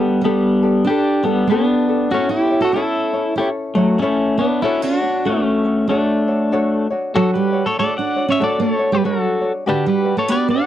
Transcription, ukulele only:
0.00 0.23 D4 soft
0.00 0.24 G4 soft
0.00 0.23 A4 soft
0.24 0.62 D4 medium
0.24 0.62 G4 medium
0.24 0.61 A4 medium
0.24 0.62 B4 medium
0.63 0.87 D4 medium
0.63 0.87 G4 medium
0.63 0.87 A4 medium
0.87 1.26 D4 medium
0.87 1.25 G4 medium
0.87 1.24 A4 medium
0.87 1.25 B4 medium
1.25 1.49 D4 soft
1.25 1.49 G4 medium
1.25 1.49 A4 medium
1.50 1.88 D4 medium
1.50 1.88 G4 medium
1.50 1.87 A4 medium
1.50 1.88 B4 medium
1.88 2.13 D4 soft
1.88 2.12 G4 soft
1.88 2.12 A4 medium
2.13 2.51 C#4 medium
2.13 2.51 E4 medium
2.13 2.51 A4 medium
2.13 2.49 C#5 medium
2.51 2.74 C#4 soft
2.51 2.75 E4 soft
2.51 2.75 C#5 medium
2.75 3.13 C#4 medium
2.75 3.14 E4 medium
2.75 3.13 A4 medium
2.75 3.12 C#5 medium
3.13 3.37 C#4 soft
3.13 3.38 E4 soft
3.13 3.38 C#5 medium
3.38 3.76 C#4 medium
3.38 3.76 E4 medium
3.38 3.76 A4 medium
3.38 3.75 C#5 medium
3.76 4.01 C#4 medium
3.76 4.01 E4 medium
3.76 4.01 C#5 medium
4.02 4.39 C#4 medium
4.02 4.40 E4 medium
4.02 4.39 A4 medium
4.02 4.39 C#5 medium
4.40 4.64 E4 soft
4.40 4.64 C#5 medium
4.63 5.02 D4 medium
4.63 5.02 F#4 loud
4.63 5.01 A4 medium
4.63 5.00 C#5 medium
5.02 5.26 D4 soft
5.02 5.25 F#4 soft
5.02 5.24 C#5 medium
5.25 5.64 F#4 medium
5.25 5.64 A4 medium
5.25 5.63 C#5 medium
5.65 5.89 F#4 medium
5.65 5.88 C#5 medium
5.89 6.27 D4 medium
5.89 6.27 F#4 medium
5.89 6.27 A4 medium
5.89 6.26 C#5 medium
6.28 6.51 D4 soft
6.28 6.52 F#4 soft
6.28 6.52 C#5 medium
6.52 6.90 D4 medium
6.52 6.91 F#4 medium
6.52 6.90 A4 medium
6.52 6.89 C#5 medium
6.90 7.14 D4 soft
6.90 7.14 F#4 medium
6.90 7.15 C#5 medium
7.14 7.53 D4 medium
7.14 7.53 F#4 medium
7.14 7.53 A4 medium
7.14 7.51 C#5 loud
7.53 7.77 D4 soft
7.53 7.78 F#4 soft
7.53 7.77 C#5 soft
7.77 8.16 D4 medium
7.77 8.16 F#4 medium
7.77 8.16 A4 medium
7.77 8.15 C#5 medium
8.16 8.39 D4 medium
8.16 8.39 F#4 medium
8.16 8.40 C#5 medium
8.40 8.78 D4 medium
8.40 8.79 F#4 medium
8.40 8.78 A4 medium
8.40 8.78 C#5 medium
8.79 9.03 D4 soft
8.79 9.04 F#4 soft
8.79 9.03 C#5 medium
9.03 9.42 D4 medium
9.03 9.41 F#4 medium
9.03 9.42 A4 medium
9.03 9.40 C#5 medium
9.41 9.66 D4 soft
9.41 9.66 F#4 soft
9.41 9.66 C#5 soft
9.66 10.05 D4 medium
9.66 10.04 F#4 loud
9.66 10.04 G4 medium
9.66 10.03 B4 medium
10.05 10.28 D4 soft
10.05 10.29 F#4 soft
10.05 10.29 B4 soft
10.29 10.66 D4 medium
10.29 10.66 F#4 medium
10.29 10.66 G4 medium
10.29 10.65 B4 medium

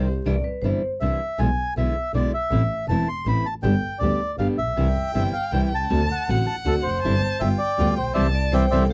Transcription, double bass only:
0.00 0.24 C2 soft
0.25 0.41 C2 medium
0.63 0.79 G1 soft
1.01 1.17 C2 soft
1.39 1.55 B1 medium
1.77 1.92 B1 soft
2.14 2.30 B1 soft
2.51 2.67 A1 medium
2.88 3.04 E1 medium
3.26 3.42 A1 soft
3.63 3.80 G1 medium
4.00 4.17 D2 soft
4.38 4.55 G1 soft
4.57 4.76 A#1 soft
4.76 4.93 C2 medium
5.15 5.31 G1 soft
5.52 5.69 C2 soft
5.71 5.90 C2 soft
5.90 6.07 D2 medium
6.28 6.44 A1 soft
6.66 6.82 D2 medium
6.85 7.03 F1 soft
7.03 7.19 G1 medium
7.42 7.57 G1 medium
7.79 7.95 D2 medium
7.98 8.16 A#1 medium
8.16 8.30 C2 medium
8.53 8.68 C2 medium
8.71 8.86 C2 medium

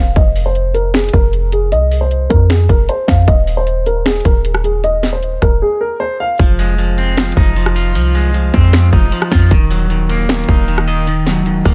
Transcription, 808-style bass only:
0.00 0.15 D#1 loud
0.16 1.10 F1 loud
1.13 1.73 F1 loud
1.72 2.27 C2 loud
2.30 2.68 F2 loud
2.69 2.88 F1 loud
3.08 3.27 F2 loud
3.28 4.21 D#1 loud
4.25 5.38 D#1 loud
5.42 5.62 D#1 loud
6.39 7.33 F1 loud
7.37 7.97 F1 loud
7.95 8.51 C2 loud
8.54 8.91 F2 loud
8.93 9.11 F1 loud
9.32 9.50 F2 loud
9.51 10.45 D#1 loud
10.49 11.61 D#1 loud
11.65 11.74 D#1 loud

